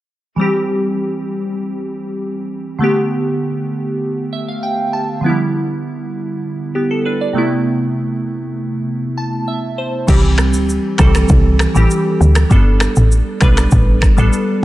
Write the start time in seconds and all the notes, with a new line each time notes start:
0.36 E3 G3 C4
0.41 G4
2.79 D3 A3 B3
2.84 G4
4.33 E5
4.48 F5
4.63 G5
4.93 A5
5.21 D3 F3 B3
5.26 G3 E4
6.75 B3 G4
6.91 A4
7.05 D4 B4
7.21 D5
7.33 C3 A3 B3
7.38 E4
9.18 A5
9.48 E5
9.78 C5
10.07 C2 D#3 G3 C4 G4, kick, crash, shaker
10.14 E3
10.38 finger snap, cross-stick, shaker
10.53 D2, shaker
10.69 shaker
10.98 C2 D#3 G3 C4 A4, finger snap, kick, cross-stick, shaker
11.05 E3
11.15 finger snap, cross-stick, shaker
11.29 C2, kick, shaker
11.59 finger snap, cross-stick, shaker
11.74 A1 E3 G3 C4 G4, shaker
11.91 shaker
12.21 D2, shaker
12.35 finger snap, cross-stick, shaker
12.50 G1 G3 B3 D4 A4, kick, shaker
12.80 finger snap, cross-stick, shaker
12.96 A1, shaker
13.12 shaker
13.41 B1 G3 B3 D4 B4, finger snap, kick, cross-stick, shaker
13.57 finger snap, cross-stick, shaker
13.71 A1, kick, shaker
14.02 finger snap, kick, cross-stick, shaker
14.17 A1 G3 B3 D4 A4, shaker
14.33 shaker